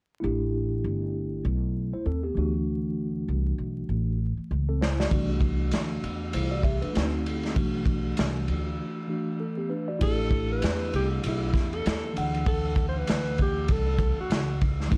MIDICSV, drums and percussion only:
0, 0, Header, 1, 2, 480
1, 0, Start_track
1, 0, Tempo, 612245
1, 174, Time_signature, 4, 2, 24, 8
1, 11740, End_track
2, 0, Start_track
2, 0, Title_t, "Drums"
2, 3782, Note_on_c, 9, 38, 86
2, 3861, Note_off_c, 9, 38, 0
2, 3920, Note_on_c, 9, 38, 80
2, 3999, Note_off_c, 9, 38, 0
2, 4007, Note_on_c, 9, 51, 80
2, 4009, Note_on_c, 9, 36, 97
2, 4085, Note_off_c, 9, 51, 0
2, 4087, Note_off_c, 9, 36, 0
2, 4238, Note_on_c, 9, 36, 88
2, 4244, Note_on_c, 9, 51, 46
2, 4316, Note_off_c, 9, 36, 0
2, 4322, Note_off_c, 9, 51, 0
2, 4479, Note_on_c, 9, 44, 51
2, 4479, Note_on_c, 9, 51, 67
2, 4497, Note_on_c, 9, 38, 93
2, 4557, Note_off_c, 9, 44, 0
2, 4557, Note_off_c, 9, 51, 0
2, 4576, Note_off_c, 9, 38, 0
2, 4732, Note_on_c, 9, 51, 48
2, 4810, Note_off_c, 9, 51, 0
2, 4964, Note_on_c, 9, 51, 74
2, 5043, Note_off_c, 9, 51, 0
2, 5201, Note_on_c, 9, 36, 81
2, 5208, Note_on_c, 9, 51, 54
2, 5279, Note_off_c, 9, 36, 0
2, 5286, Note_off_c, 9, 51, 0
2, 5347, Note_on_c, 9, 51, 36
2, 5426, Note_off_c, 9, 51, 0
2, 5451, Note_on_c, 9, 44, 42
2, 5451, Note_on_c, 9, 51, 64
2, 5463, Note_on_c, 9, 38, 90
2, 5529, Note_off_c, 9, 44, 0
2, 5529, Note_off_c, 9, 51, 0
2, 5541, Note_off_c, 9, 38, 0
2, 5693, Note_on_c, 9, 51, 55
2, 5772, Note_off_c, 9, 51, 0
2, 5827, Note_on_c, 9, 51, 34
2, 5840, Note_on_c, 9, 38, 30
2, 5905, Note_off_c, 9, 51, 0
2, 5918, Note_off_c, 9, 38, 0
2, 5926, Note_on_c, 9, 51, 75
2, 5928, Note_on_c, 9, 36, 102
2, 6005, Note_off_c, 9, 51, 0
2, 6007, Note_off_c, 9, 36, 0
2, 6159, Note_on_c, 9, 36, 87
2, 6164, Note_on_c, 9, 51, 47
2, 6237, Note_off_c, 9, 36, 0
2, 6243, Note_off_c, 9, 51, 0
2, 6403, Note_on_c, 9, 44, 58
2, 6403, Note_on_c, 9, 51, 68
2, 6422, Note_on_c, 9, 38, 99
2, 6482, Note_off_c, 9, 44, 0
2, 6482, Note_off_c, 9, 51, 0
2, 6500, Note_off_c, 9, 38, 0
2, 6648, Note_on_c, 9, 51, 47
2, 6726, Note_off_c, 9, 51, 0
2, 7847, Note_on_c, 9, 51, 86
2, 7850, Note_on_c, 9, 36, 102
2, 7926, Note_off_c, 9, 51, 0
2, 7928, Note_off_c, 9, 36, 0
2, 8081, Note_on_c, 9, 36, 95
2, 8089, Note_on_c, 9, 51, 49
2, 8159, Note_off_c, 9, 36, 0
2, 8167, Note_off_c, 9, 51, 0
2, 8326, Note_on_c, 9, 44, 55
2, 8326, Note_on_c, 9, 51, 79
2, 8344, Note_on_c, 9, 38, 93
2, 8404, Note_off_c, 9, 44, 0
2, 8404, Note_off_c, 9, 51, 0
2, 8422, Note_off_c, 9, 38, 0
2, 8572, Note_on_c, 9, 51, 47
2, 8650, Note_off_c, 9, 51, 0
2, 8808, Note_on_c, 9, 51, 71
2, 8886, Note_off_c, 9, 51, 0
2, 9044, Note_on_c, 9, 36, 88
2, 9053, Note_on_c, 9, 51, 53
2, 9064, Note_on_c, 9, 38, 34
2, 9123, Note_off_c, 9, 36, 0
2, 9132, Note_off_c, 9, 51, 0
2, 9142, Note_off_c, 9, 38, 0
2, 9194, Note_on_c, 9, 51, 37
2, 9272, Note_off_c, 9, 51, 0
2, 9296, Note_on_c, 9, 44, 47
2, 9296, Note_on_c, 9, 51, 59
2, 9308, Note_on_c, 9, 38, 103
2, 9374, Note_off_c, 9, 44, 0
2, 9374, Note_off_c, 9, 51, 0
2, 9387, Note_off_c, 9, 38, 0
2, 9537, Note_on_c, 9, 51, 54
2, 9616, Note_off_c, 9, 51, 0
2, 9677, Note_on_c, 9, 51, 34
2, 9755, Note_off_c, 9, 51, 0
2, 9770, Note_on_c, 9, 51, 83
2, 9772, Note_on_c, 9, 36, 115
2, 9849, Note_off_c, 9, 51, 0
2, 9850, Note_off_c, 9, 36, 0
2, 10003, Note_on_c, 9, 36, 98
2, 10012, Note_on_c, 9, 51, 47
2, 10082, Note_off_c, 9, 36, 0
2, 10091, Note_off_c, 9, 51, 0
2, 10249, Note_on_c, 9, 44, 60
2, 10249, Note_on_c, 9, 51, 82
2, 10267, Note_on_c, 9, 38, 102
2, 10327, Note_off_c, 9, 44, 0
2, 10327, Note_off_c, 9, 51, 0
2, 10345, Note_off_c, 9, 38, 0
2, 10490, Note_on_c, 9, 51, 50
2, 10499, Note_on_c, 9, 36, 75
2, 10569, Note_off_c, 9, 51, 0
2, 10578, Note_off_c, 9, 36, 0
2, 10727, Note_on_c, 9, 51, 70
2, 10733, Note_on_c, 9, 36, 88
2, 10805, Note_off_c, 9, 51, 0
2, 10811, Note_off_c, 9, 36, 0
2, 10965, Note_on_c, 9, 36, 94
2, 10972, Note_on_c, 9, 51, 52
2, 11043, Note_off_c, 9, 36, 0
2, 11050, Note_off_c, 9, 51, 0
2, 11214, Note_on_c, 9, 44, 49
2, 11214, Note_on_c, 9, 51, 59
2, 11226, Note_on_c, 9, 38, 105
2, 11292, Note_off_c, 9, 44, 0
2, 11292, Note_off_c, 9, 51, 0
2, 11305, Note_off_c, 9, 38, 0
2, 11456, Note_on_c, 9, 51, 57
2, 11459, Note_on_c, 9, 36, 87
2, 11534, Note_off_c, 9, 51, 0
2, 11538, Note_off_c, 9, 36, 0
2, 11608, Note_on_c, 9, 38, 32
2, 11686, Note_off_c, 9, 38, 0
2, 11695, Note_on_c, 9, 36, 103
2, 11695, Note_on_c, 9, 51, 80
2, 11740, Note_off_c, 9, 36, 0
2, 11740, Note_off_c, 9, 51, 0
2, 11740, End_track
0, 0, End_of_file